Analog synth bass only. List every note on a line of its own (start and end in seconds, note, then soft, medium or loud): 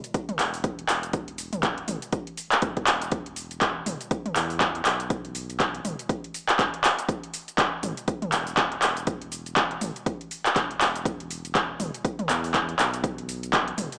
0.39 0.85 E1 loud
0.89 1.84 E1 medium
1.88 1.99 A1 loud
2.62 2.73 A1 medium
2.77 2.85 E1 medium
2.87 3.83 E1 medium
3.86 3.97 E1 loud
4.36 4.82 E2 loud
4.86 5.81 B1 medium
5.85 5.96 E1 loud
6.59 6.70 A1 medium
7.83 7.94 A1 loud
8.33 8.78 E1 loud
8.82 9.78 E1 medium
9.81 9.92 A1 loud
10.56 10.76 E1 loud
10.81 11.76 E1 medium
11.80 11.91 E1 loud
12.29 12.75 E2 loud
12.79 13.74 B1 medium
13.78 13.89 E1 loud